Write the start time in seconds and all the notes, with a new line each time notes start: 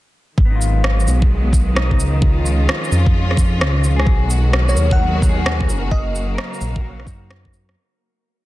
0.37 G#1 D#3 F#3 G#3 B3, kick
0.45 B3
0.51 D#4
0.55 F4
0.61 shaker
0.84 cross-stick
1.00 shaker
1.07 B1, shaker
1.22 kick
1.53 kick, shaker
1.75 D#4, cross-stick
1.91 kick
1.99 C#2, shaker
2.22 F3 G#3 C#4 F4, kick
2.46 shaker
2.69 cross-stick
2.84 shaker
2.92 F2, shaker
3.06 kick
3.15 F2
3.31 cross-stick
3.37 kick, shaker
3.61 C#2, cross-stick
3.84 shaker
3.96 G#4, cross-stick
4.07 B1 B2 D#3 F#3 G#3 A#3 F#4 A#4, kick
4.30 shaker
4.53 cross-stick
4.69 C#5, shaker
4.76 D#2, shaker
4.91 F#5, kick
5.22 kick, shaker
5.29 G#4
5.34 B3
5.46 cross-stick
5.61 kick
5.69 F#1, shaker
5.91 C#3 F#3 A#3 D#5 F5, kick
6.16 shaker
6.34 A#4, cross-stick
6.54 shaker
6.61 A#1, shaker
6.76 F#4, kick
6.84 A#1 A#4
6.89 C#5
7.00 cross-stick
7.04 F#2 D#4, kick, shaker
7.09 F#4
7.31 cross-stick
7.45 kick
7.53 F#2, shaker
7.69 cross-stick